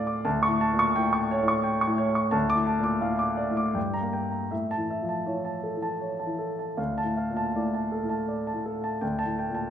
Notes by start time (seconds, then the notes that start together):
Already playing: D2 A2 A#2 D5 F5 A5 D6
0.07 D6
0.25 D2 A5
0.43 C#6
0.48 A2
0.61 A5
0.73 A#2
0.79 C#6
0.96 A2 G5
1.13 C#6
1.31 C#5
1.43 A2
1.48 C#6
1.63 G5
1.81 C#6
1.87 A2
1.98 C#5
2.15 C#6
2.31 D2 A5
2.50 D6
2.55 A2
2.67 A5
2.79 A#2
2.84 D6
3.01 A2 F5
3.19 D6
3.37 D5
3.50 A2
3.57 D6
3.74 G2 G5
3.94 A#5
4.01 A#3
4.13 G5
4.31 A#5
4.51 A2 E5
4.71 A5
4.77 E3
4.91 E5
5.03 F3
5.09 A5
5.26 E3 C#5
5.45 A5
5.63 A4
5.76 E3
5.82 A5
6.01 C#5
6.19 A5
6.26 E3
6.38 A4
6.59 A5
6.77 D2 F5
6.98 A5
7.04 A2
7.17 F5
7.30 A#2
7.37 A5
7.55 A2 D5
7.74 A5
7.92 A4
8.03 A2
8.09 A5
8.28 D5
8.47 A5
8.54 A2
8.66 A4
8.84 A5
9.01 D2 G5
9.19 A5
9.26 A2
9.39 G5
9.49 A#2
9.55 A5